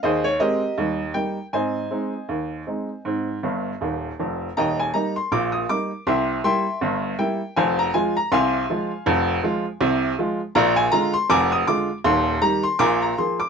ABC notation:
X:1
M:2/4
L:1/16
Q:"Swing 16ths" 1/4=80
K:Ab
V:1 name="Upright piano"
[Ace] d [GBe]4 g2 | [cea]8- | [cea]6 z2 | [K:Eb] [egb] a b c' d' e' d'2 |
[=egc']2 [egc']4 g2 | [cfa] b a b [fac']4- | [fac']8 | [dfb] a b c' [abd'] e' d'2 |
c'2 b c' [abd'] b c' d' |]
V:2 name="Upright piano" clef=bass
E,,2 [A,C]2 [E,,G,]2 [G,B,E]2 | [A,,C]2 [A,CE]2 E,,2 [A,CE]2 | [A,,C]2 [G,,,G,,]2 [E,,,E,,]2 [F,,,F,,]2 | [K:Eb] [E,,,E,,]2 [G,B,E]2 [B,,,B,,]2 [G,B,E]2 |
[C,,C,]2 [G,B,=E]2 [G,,,G,,]2 [G,B,E]2 | [F,,,F,,]2 [F,A,F]2 [C,,C,]2 [F,A,F]2 | [F,,,F,,]2 [F,A,F]2 [C,,C,]2 [F,A,F]2 | [B,,,B,,]2 [D,A,F]2 [F,,,F,,]2 [D,A,F]2 |
[E,,,E,,]2 [E,G,G]2 [B,,,B,,]2 [F,B,A]2 |]